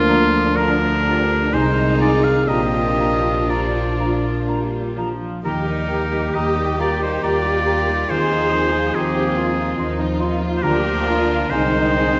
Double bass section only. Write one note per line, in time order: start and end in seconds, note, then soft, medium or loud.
0.00 1.50 D2 medium
1.53 2.48 C2 medium
2.47 5.23 A#1 medium
5.44 6.24 D#2 medium
6.34 7.12 D#2 soft
7.22 7.99 D#2 medium
8.09 8.85 D#2 medium
8.95 9.68 D#2 medium
9.77 10.52 D#2 medium
10.62 11.48 D2 medium
11.52 12.20 C2 medium